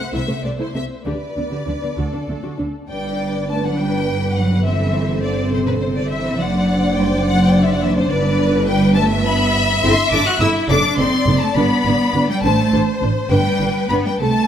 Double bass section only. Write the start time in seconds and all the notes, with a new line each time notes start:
0.13 C2
0.44 C2
0.75 C2
1.06 D2
1.37 D2
1.67 D2
1.97 D2
2.29 D2
2.59 D2
2.89 G1
6.39 F#1
8.10 G1
9.83 G1
10.12 G1
10.40 G1
10.69 F#1
10.98 F#1
11.27 F#1
11.56 G1
11.85 G1
12.15 G1
12.44 A1
12.72 A1
13.01 A1
13.30 G1
13.59 G1
13.89 G1
14.19 C2